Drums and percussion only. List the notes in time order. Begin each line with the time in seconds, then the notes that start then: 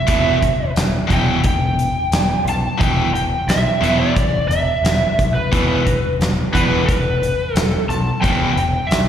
0.08 kick, closed hi-hat
0.42 kick, closed hi-hat
0.76 snare, closed hi-hat
1.10 kick, closed hi-hat
1.44 kick, closed hi-hat
1.79 closed hi-hat
2.12 snare, closed hi-hat
2.48 closed hi-hat
2.81 kick, closed hi-hat
3.15 closed hi-hat
3.49 snare, closed hi-hat
3.83 closed hi-hat
4.16 kick, closed hi-hat
4.51 closed hi-hat
4.85 snare, closed hi-hat
5.19 kick, closed hi-hat
5.53 kick, closed hi-hat
5.87 kick, closed hi-hat
6.21 snare, closed hi-hat
6.55 kick, closed hi-hat
6.89 kick, closed hi-hat
7.23 closed hi-hat
7.56 snare, closed hi-hat
7.90 closed hi-hat
8.24 kick, closed hi-hat
8.57 closed hi-hat
8.91 snare, closed hi-hat